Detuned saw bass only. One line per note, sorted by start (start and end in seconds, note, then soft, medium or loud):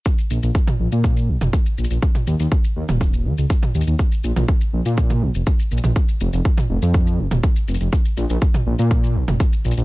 0.30 0.38 A#1 medium
0.43 0.50 A#1 medium
0.80 0.87 A#1 loud
0.92 1.30 A#2 medium
1.29 1.36 A#1 loud
1.41 1.49 F1 medium
1.78 1.86 A#1 medium
1.90 1.98 A#1 medium
2.27 2.35 D#2 loud
2.40 2.47 D#2 medium
2.76 2.84 D#2 medium
2.89 3.27 D#1 medium
3.25 3.33 D#2 medium
3.38 3.45 C#2 medium
3.75 3.82 D#2 medium
3.87 3.94 D#2 medium
4.24 4.31 A#1 medium
4.36 4.44 A#1 medium
4.73 4.81 A#1 medium
4.86 5.24 A#2 medium
5.22 5.30 A#1 loud
5.35 5.42 F1 medium
5.71 5.79 A#1 medium
5.84 5.91 A#1 medium
6.21 6.28 F1 medium
6.33 6.40 F1 medium
6.70 6.77 F1 medium
6.82 7.20 F2 medium
7.19 7.26 F1 medium
7.31 7.39 D#1 medium
7.68 7.76 F1 medium
7.80 7.88 F1 medium
8.17 8.25 A#1 medium
8.30 8.37 A#1 medium
8.66 8.74 A#1 medium
8.79 9.17 A#2 medium
9.16 9.23 A#1 medium
9.28 9.36 F1 medium
9.65 9.72 A#1 medium
9.77 9.85 A#1 medium